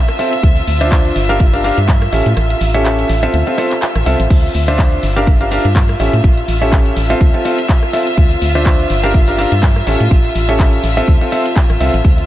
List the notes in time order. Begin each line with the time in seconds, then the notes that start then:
Already playing: F4 E5
0.08 cross-stick
0.19 C4 F4 A4 E5, open hi-hat
0.33 closed hi-hat
0.43 D2, kick, closed hi-hat
0.57 closed hi-hat
0.67 D2, open hi-hat
0.81 D4 F4 C5 E5, closed hi-hat
0.92 kick, clap, closed hi-hat
1.05 closed hi-hat
1.16 G1, open hi-hat
1.29 D4 G4 A#4 F5, closed hi-hat
1.40 kick, closed hi-hat
1.53 D4 G4 A#4 F5, closed hi-hat
1.64 D4 G4 A#4 F5, open hi-hat
1.78 G2, closed hi-hat
1.88 kick, clap, closed hi-hat
2.02 cross-stick
2.13 A1 C#4 G4 A4 E5, open hi-hat
2.26 A2, closed hi-hat
2.37 A1, cross-stick, closed hi-hat
2.50 closed hi-hat
2.61 A1, open hi-hat
2.74 C#4 G4 A4 E5, closed hi-hat
2.85 clap, closed hi-hat
2.99 closed hi-hat
3.09 A1, open hi-hat
3.23 C4 F4 A4 E5, closed hi-hat
3.34 D2, closed hi-hat
3.47 C4 F4 A4 E5, closed hi-hat
3.58 C4 F4 A4 E5, cross-stick, open hi-hat
3.71 clap, closed hi-hat
3.82 clap, closed hi-hat
3.95 A1, cross-stick, closed hi-hat
4.06 C2 C4 F4 A4 E5, open hi-hat
4.20 A1, closed hi-hat
4.30 D2 F4 E5, kick, closed hi-hat, crash
4.44 closed hi-hat
4.55 D2, open hi-hat
4.68 D4 F4 C5 E5, closed hi-hat
4.79 kick, clap, closed hi-hat
4.92 closed hi-hat
5.03 G1, open hi-hat
5.16 D4 G4 A#4 F5, closed hi-hat
5.27 kick, closed hi-hat
5.41 D4 G4 A#4 F5, closed hi-hat
5.51 D4 G4 A#4 F5, open hi-hat
5.65 G2, closed hi-hat
5.76 kick, clap, closed hi-hat
5.89 cross-stick
6.00 A1 C#4 G4 A4 E5, open hi-hat
6.13 A2, closed hi-hat
6.24 A1, kick, closed hi-hat
6.38 closed hi-hat
6.48 A1, open hi-hat
6.62 C#4 G4 A4 E5, closed hi-hat
6.72 kick, clap, closed hi-hat
6.86 closed hi-hat
6.97 A1, open hi-hat
7.10 C4 F4 A4 E5, closed hi-hat
7.21 D2, kick, closed hi-hat
7.34 C4 F4 A4 E5, closed hi-hat
7.45 C4 F4 A4 E5, open hi-hat
7.58 closed hi-hat
7.69 kick, clap, closed hi-hat
7.83 cross-stick
7.93 C4 F4 A4 E5, open hi-hat
8.07 closed hi-hat
8.17 D2, kick, closed hi-hat
8.31 closed hi-hat
8.42 D2, open hi-hat
8.55 D4 F4 C5 E5, closed hi-hat
8.66 kick, clap, closed hi-hat
8.79 closed hi-hat
8.90 G1, open hi-hat
9.03 D4 G4 A#4 F5, closed hi-hat
9.14 kick, closed hi-hat
9.28 D4 G4 A#4 F5, closed hi-hat
9.38 D4 G4 A#4 F5, open hi-hat
9.52 G2, closed hi-hat
9.63 kick, clap, closed hi-hat
9.76 cross-stick
9.87 A1 C#4 G4 A4 E5, open hi-hat
10.00 A2, closed hi-hat
10.11 A1, kick, closed hi-hat
10.25 closed hi-hat
10.35 A1, open hi-hat
10.49 C#4 G4 A4 E5, closed hi-hat
10.59 kick, clap, closed hi-hat
10.73 closed hi-hat
10.84 A1, open hi-hat
10.97 C4 F4 A4 E5, closed hi-hat
11.08 D2, kick, closed hi-hat
11.21 C4 F4 A4 E5, closed hi-hat
11.32 C4 F4 A4 E5, open hi-hat
11.46 closed hi-hat
11.56 kick, clap, closed hi-hat
11.70 A1, cross-stick, closed hi-hat
11.80 C2 C4 F4 A4 E5, open hi-hat
11.94 A1, closed hi-hat
12.05 D2, kick, closed hi-hat
12.18 closed hi-hat